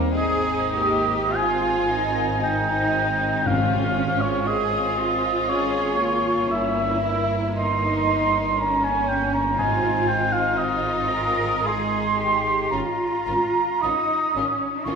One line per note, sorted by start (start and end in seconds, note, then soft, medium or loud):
0.00 0.15 A#3 medium
0.00 0.13 C4 medium
0.13 6.47 G#1 medium
0.13 0.71 C4 medium
0.13 1.30 D#4 medium
0.13 0.71 G#4 medium
0.13 1.30 C5 medium
0.13 1.38 D#5 medium
0.75 1.35 A#3 medium
0.75 1.33 G4 medium
1.33 2.40 C4 soft
1.33 2.41 F4 medium
1.33 1.89 F4 medium
1.33 1.89 G#4 medium
1.33 2.42 G#5 medium
1.89 2.41 D#4 medium
1.89 2.42 A#4 medium
2.41 5.46 C4 medium
2.41 3.46 D#4 medium
2.41 3.44 D#4 medium
2.41 3.46 C5 medium
2.41 3.48 G5 medium
3.46 4.96 G#2 medium
3.46 4.48 C#4 medium
3.46 4.47 F4 soft
3.46 5.47 G#4 medium
3.46 4.23 F5 medium
4.21 4.48 C#5 medium
4.47 6.47 F4 medium
4.47 4.99 G#4 medium
4.47 5.50 D#5 medium
4.99 5.50 F4 medium
5.49 6.00 C#4 medium
5.49 5.99 G#4 medium
5.49 6.49 G#4 soft
5.49 6.50 C#5 medium
6.00 8.55 A#3 soft
6.00 6.51 F4 medium
6.49 9.54 G1 medium
6.49 7.03 C#4 soft
6.49 7.58 E4 medium
6.49 7.58 A#4 medium
6.49 7.28 E5 medium
7.03 7.57 E4 medium
7.56 8.57 D#4 medium
7.56 8.59 D#4 medium
7.56 8.58 A#4 soft
7.56 8.61 C6 medium
8.59 9.56 A#3 medium
8.59 9.58 C#4 medium
8.59 9.58 C#4 soft
8.59 9.59 C#5 soft
8.59 8.86 A#5 medium
8.84 9.10 G#5 medium
9.09 9.35 G5 medium
9.34 9.58 A#5 medium
9.58 12.71 G#1 medium
9.58 11.07 G#2 medium
9.58 10.55 C4 soft
9.58 10.55 D#4 soft
9.58 10.55 F4 medium
9.58 10.56 C5 soft
9.58 10.09 G#5 medium
10.08 10.34 G5 medium
10.33 10.59 F5 medium
10.57 11.64 C4 soft
10.57 11.11 D#4 medium
10.57 11.67 F4 medium
10.57 11.10 C5 soft
10.57 11.68 D#5 medium
11.11 11.66 G#4 medium
11.11 11.66 A#4 medium
11.67 12.69 G#3 medium
11.67 12.72 D#4 medium
11.67 12.69 G#4 medium
11.67 12.20 G#4 medium
11.67 12.70 C6 medium
12.19 12.70 G4 medium
12.71 12.80 G#1 medium
12.71 12.80 C#4 medium
12.71 13.83 F4 medium
12.71 12.80 F4 soft
12.71 12.80 A#4 medium
12.71 13.84 A#5 medium
13.27 13.35 G#1 medium
13.27 13.37 C#4 soft
13.27 13.35 F4 soft
13.27 13.35 A#4 soft
13.82 13.92 G#1 medium
13.82 13.92 C#4 soft
13.82 14.35 D#4 medium
13.82 13.92 F4 soft
13.82 13.92 A#4 soft
13.82 14.59 D#6 medium
14.35 14.43 G#1 medium
14.35 14.86 C#4 medium
14.35 14.44 C#4 soft
14.35 14.46 F4 soft
14.35 14.44 A#4 soft
14.85 14.95 G#1 medium
14.85 14.95 C#4 medium
14.85 14.95 F4 medium
14.85 14.95 F4 soft
14.85 14.95 A#4 soft
14.85 14.95 C#6 medium